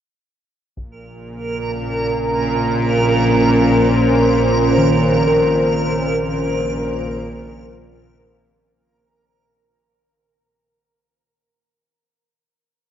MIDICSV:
0, 0, Header, 1, 6, 480
1, 0, Start_track
1, 0, Key_signature, -5, "minor"
1, 0, Tempo, 500000
1, 12387, End_track
2, 0, Start_track
2, 0, Title_t, "Ambient pad"
2, 0, Program_c, 0, 92
2, 726, Note_on_c, 0, 61, 80
2, 2334, Note_on_c, 0, 72, 73
2, 2523, Note_on_c, 0, 70, 68
2, 8412, Note_off_c, 0, 61, 0
2, 8424, Note_off_c, 0, 72, 0
2, 8429, Note_off_c, 0, 70, 0
2, 12387, End_track
3, 0, Start_track
3, 0, Title_t, "Synth texture"
3, 0, Program_c, 1, 99
3, 746, Note_on_c, 1, 70, 69
3, 8441, Note_off_c, 1, 70, 0
3, 12387, End_track
4, 0, Start_track
4, 0, Title_t, "Kettle gongs"
4, 0, Program_c, 2, 14
4, 4587, Note_on_c, 2, 51, 61
4, 5064, Note_on_c, 2, 70, 47
4, 10342, Note_off_c, 2, 51, 0
4, 10821, Note_off_c, 2, 70, 0
4, 12387, End_track
5, 0, Start_track
5, 0, Title_t, "Synth drone"
5, 0, Program_c, 3, 95
5, 731, Note_on_c, 3, 46, 60
5, 736, Note_on_c, 3, 34, 62
5, 8511, Note_off_c, 3, 46, 0
5, 8513, Note_off_c, 3, 34, 0
5, 12387, End_track
6, 0, Start_track
6, 0, Title_t, "Taiko and cinematic ensemble drums"
6, 741, Note_on_c, 9, 41, 60
6, 837, Note_off_c, 9, 41, 0
6, 12387, End_track
0, 0, End_of_file